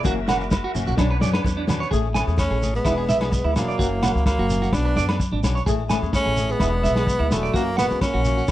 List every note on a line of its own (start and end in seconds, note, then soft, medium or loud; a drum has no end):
0.03 0.61 F#1 loud
0.03 0.19 E3 medium
0.03 0.19 A#3 medium
0.03 0.19 C#4 medium
0.03 0.97 F#4 medium
0.03 0.13 F#4 medium
0.03 0.97 A#4 medium
0.03 0.97 E5 medium
0.03 kick medium
0.03 muted conga soft
0.03 shekere medium
0.27 0.42 E3 medium
0.27 0.43 A#3 medium
0.27 0.43 C#4 medium
0.27 0.36 F#5 medium
0.27 snare medium
0.27 muted conga soft
0.27 low agogo medium
0.27 shekere medium
0.41 shekere soft
0.51 kick medium
0.51 snare medium
0.51 high conga medium
0.51 low agogo medium
0.51 shekere medium
0.64 0.71 F#4 medium
0.74 0.85 F#1 medium
0.74 0.87 E3 medium
0.74 0.85 C#4 medium
0.74 muted nylon-string guitar stroke medium
0.74 shekere medium
0.86 0.96 A#1 medium
0.86 0.98 A#3 medium
0.86 0.97 C#4 medium
0.86 0.94 F#4 medium
0.86 shekere soft
0.97 1.17 B1 medium
0.97 1.12 F#3 medium
0.97 1.13 C#4 medium
0.97 1.06 D4 medium
0.97 1.13 D4 medium
0.97 1.92 D4 medium
0.97 1.92 B4 medium
0.97 1.92 C#5 medium
0.97 kick medium
0.97 snare medium
0.97 muted conga soft
0.97 high conga medium
0.97 low agogo medium
0.97 shekere medium
1.11 1.17 B4 medium
1.20 1.40 F#2 medium
1.20 1.33 F#3 medium
1.20 1.34 C#4 medium
1.20 1.32 D4 medium
1.20 1.29 D5 medium
1.20 snare medium
1.20 shekere medium
1.33 1.48 C#4 soft
1.33 1.47 D4 medium
1.33 1.40 B4 medium
1.33 snare medium
1.33 low agogo medium
1.33 shekere soft
1.44 1.82 E2 loud
1.44 kick medium
1.44 high conga medium
1.44 shekere medium
1.57 1.64 D4 medium
1.67 1.82 F#3 medium
1.67 1.83 C#4 medium
1.67 1.83 D4 medium
1.67 snare medium
1.67 muted conga soft
1.67 low conga medium
1.67 low agogo medium
1.67 shekere medium
1.80 1.87 C#5 medium
1.80 shekere soft
1.91 2.20 A1 medium
1.91 2.06 A3 medium
1.91 2.07 C#4 medium
1.91 1.99 G#4 medium
1.91 2.07 G#4 medium
1.91 muted nylon-string guitar stroke medium
1.91 kick medium
1.91 shekere medium
2.14 2.28 E3 medium
2.14 2.28 A3 medium
2.14 2.27 C#4 medium
2.14 2.26 G#4 medium
2.14 2.22 G#5 medium
2.14 snare medium
2.14 low agogo medium
2.14 shekere medium
2.27 2.46 E2 medium
2.27 2.42 A3 soft
2.27 2.41 C#4 soft
2.27 2.41 G#4 medium
2.27 shekere soft
2.37 2.73 A3 medium
2.37 2.72 C#4 medium
2.37 kick medium
2.37 snare medium
2.37 low agogo medium
2.37 shekere medium
2.50 2.78 A1 medium
2.50 2.57 G#4 medium
2.50 snare soft
2.61 2.76 E3 soft
2.61 2.76 A3 medium
2.61 2.77 C#4 soft
2.61 2.77 G#4 medium
2.61 shekere medium
2.74 3.52 G#3 medium
2.74 3.52 B3 medium
2.74 muted clean electric guitar stroke medium
2.74 shekere soft
2.84 3.10 E1 medium
2.84 2.97 E3 medium
2.84 2.98 B3 medium
2.84 2.97 D4 medium
2.84 2.92 E4 medium
2.84 2.96 G#4 medium
2.84 kick medium
2.84 snare medium
2.84 low agogo medium
2.84 shekere medium
2.97 3.12 B3 soft
2.97 3.12 D4 soft
2.97 3.11 G#4 soft
2.97 3.04 G#4 medium
3.09 3.37 B1 medium
3.09 3.16 E5 medium
3.09 snare medium
3.09 shekere medium
3.21 3.36 B3 soft
3.21 3.35 D4 soft
3.21 3.35 G#4 soft
3.21 3.28 G#4 medium
3.21 snare medium
3.21 low agogo medium
3.21 shekere soft
3.32 kick medium
3.32 shekere medium
3.44 3.53 D2 medium
3.44 3.51 E4 medium
3.55 3.74 E1 medium
3.55 3.70 E3 medium
3.55 4.23 F#3 medium
3.55 4.22 A#3 medium
3.55 3.71 B3 medium
3.55 3.71 D4 medium
3.55 3.71 G#4 medium
3.55 snare medium
3.55 low agogo medium
3.55 shekere loud
3.68 3.75 D5 medium
3.68 shekere soft
3.79 4.08 F#1 medium
3.79 3.94 E3 medium
3.79 3.94 A#3 medium
3.79 3.94 C#4 medium
3.79 3.87 F#4 medium
3.79 kick medium
3.79 shekere medium
4.02 4.15 E3 medium
4.02 4.15 A#3 medium
4.02 4.13 C#4 medium
4.02 4.10 F#5 medium
4.02 snare medium
4.02 low agogo medium
4.02 shekere loud
4.14 4.34 C#2 medium
4.14 4.29 A#3 soft
4.14 4.28 C#4 soft
4.14 shekere soft
4.26 4.77 F#3 medium
4.26 4.75 A#3 medium
4.26 kick medium
4.26 snare medium
4.26 low agogo medium
4.26 shekere medium
4.38 4.66 F#1 medium
4.38 4.46 F#4 medium
4.50 4.64 E3 medium
4.50 4.65 A#3 medium
4.50 4.65 C#4 medium
4.50 shekere medium
4.62 4.69 F#4 medium
4.62 snare soft
4.62 shekere soft
4.72 4.97 B1 medium
4.72 4.85 F#3 medium
4.72 5.21 B3 medium
4.72 4.86 C#4 medium
4.72 5.20 D4 medium
4.72 4.85 D4 medium
4.72 muted clean electric guitar stroke medium
4.72 kick medium
4.72 snare medium
4.72 low agogo medium
4.72 shekere medium
4.85 5.00 C#4 soft
4.85 4.99 D4 medium
4.85 4.92 B4 medium
4.96 5.25 F#2 medium
4.96 5.04 D5 medium
4.96 snare medium
4.96 shekere medium
5.09 5.23 C#4 soft
5.09 5.22 D4 soft
5.09 5.15 B4 medium
5.09 snare medium
5.09 low agogo medium
5.09 shekere soft
5.20 kick medium
5.20 shekere medium
5.32 5.41 G#1 medium
5.32 5.39 D4 medium
5.43 5.62 B1 medium
5.43 5.58 F#3 medium
5.43 5.59 C#4 medium
5.43 5.59 D4 medium
5.43 snare medium
5.43 low agogo medium
5.43 shekere medium
5.55 5.62 C#5 medium
5.55 shekere soft
5.66 5.96 A1 medium
5.66 5.82 E3 medium
5.66 5.82 A3 medium
5.66 5.74 G#4 medium
5.66 5.82 G#4 medium
5.66 muted nylon-string guitar stroke medium
5.66 kick medium
5.66 shekere medium
5.89 6.03 E3 medium
5.89 6.03 A3 medium
5.89 6.02 C#4 medium
5.89 6.01 G#4 medium
5.89 5.97 G#5 medium
5.89 snare medium
5.89 low agogo medium
5.89 shekere medium
6.02 6.21 E2 medium
6.02 6.17 A3 soft
6.02 6.17 C#4 soft
6.02 6.16 G#4 soft
6.02 shekere soft
6.13 6.53 C#4 loud
6.13 kick medium
6.13 snare medium
6.13 low agogo medium
6.13 shekere medium
6.17 6.54 A3 medium
6.25 6.53 A1 medium
6.25 6.32 G#4 medium
6.37 6.52 E3 medium
6.37 6.52 A3 medium
6.37 6.53 C#4 medium
6.37 6.53 G#4 medium
6.37 shekere medium
6.49 7.33 G#3 medium
6.49 7.35 B3 medium
6.49 6.56 G#4 medium
6.49 shekere soft
6.59 6.85 E1 medium
6.59 6.73 E3 medium
6.59 6.73 B3 medium
6.59 6.73 D4 medium
6.59 6.68 E4 medium
6.59 6.72 G#4 medium
6.59 kick medium
6.59 snare medium
6.59 low agogo medium
6.59 shekere medium
6.73 6.87 B3 soft
6.73 6.87 D4 soft
6.73 6.87 G#4 soft
6.83 7.13 B1 medium
6.83 6.91 E5 medium
6.83 snare medium
6.83 shekere medium
6.95 7.11 B3 soft
6.95 7.10 D4 soft
6.95 7.03 G#4 medium
6.95 7.10 G#4 soft
6.95 snare medium
6.95 low agogo medium
6.95 shekere soft
7.07 kick medium
7.07 shekere medium
7.19 7.29 D2 medium
7.19 7.26 E4 medium
7.31 7.50 E1 medium
7.31 7.46 E3 medium
7.31 7.56 F#3 medium
7.31 7.57 A3 medium
7.31 7.46 B3 medium
7.31 7.47 D4 medium
7.31 7.47 G#4 medium
7.31 snare medium
7.31 low agogo medium
7.31 shekere medium
7.43 7.50 D5 medium
7.43 shekere soft
7.54 7.83 F#1 medium
7.54 7.69 E3 medium
7.54 7.79 F#3 medium
7.54 7.70 A#3 medium
7.54 7.78 A#3 medium
7.54 7.70 C#4 medium
7.54 7.61 F#4 medium
7.54 7.70 F#4 medium
7.54 kick medium
7.54 shekere medium
7.77 8.01 G#3 medium
7.77 7.91 A#3 medium
7.77 8.00 B3 medium
7.77 7.89 F#4 medium
7.77 7.85 F#5 medium
7.77 snare medium
7.77 low agogo medium
7.77 shekere medium
7.90 8.09 C#2 medium
7.90 8.05 A#3 soft
7.90 8.05 C#4 soft
7.90 8.04 F#4 medium
7.90 shekere soft
8.01 8.47 A#3 medium
8.01 8.52 C#4 medium
8.01 kick medium
8.01 snare medium
8.01 low agogo medium
8.01 shekere medium
8.14 8.42 A#1 medium
8.14 8.21 F#4 medium
8.25 8.40 E3 soft
8.25 8.40 A#3 soft
8.25 8.41 C#4 soft
8.25 8.41 F#4 medium
8.25 shekere medium
8.37 8.44 F#4 medium
8.37 shekere soft
8.48 8.52 B1 medium
8.48 muted clean electric guitar stroke medium
8.48 kick medium
8.48 snare medium
8.48 shekere medium